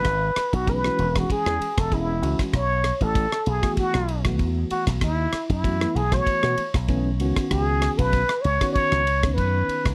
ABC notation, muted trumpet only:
X:1
M:4/4
L:1/16
Q:"Swing 16ths" 1/4=97
K:Bmix
V:1 name="Muted trumpet"
B3 F B3 F G3 A E3 z | c3 A3 G2 F3 z3 F2 | E3 E3 G c4 z4 z | G3 B3 c2 c4 B4 |]